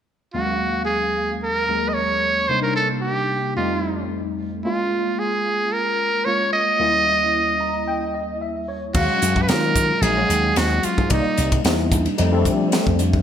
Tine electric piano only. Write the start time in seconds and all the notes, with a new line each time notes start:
0.34 D#2 F#3 G#3 A#3 C#4 F5
1.68 D#2 F#3 G#3 A#3 C#4 G#4
2.48 C3 G3 A#3 D4 D#4
3.56 F2 G3 A3 C4 D#4
4.64 G#3 A#3 C#4 F4
6.26 G#3 A#3 C#4 F4
6.79 D#2 G3 A#3 C#4 E4
7.60 A#5
7.88 G5
8.14 D#5
8.41 E5
8.68 C#5
8.94 F#3 G#3 C#4 F5
9.49 F#3 G#3 C#4 F4
10.02 F#3 G#3 C#4 D#4
10.17 F#3 G#3 C#4 F#4
11.09 G3 A#3 D#4 D5
11.65 G3 A#3 D4 D#4
12.18 G3 A3 C4 D#4
12.32 G3 A3 C4 D4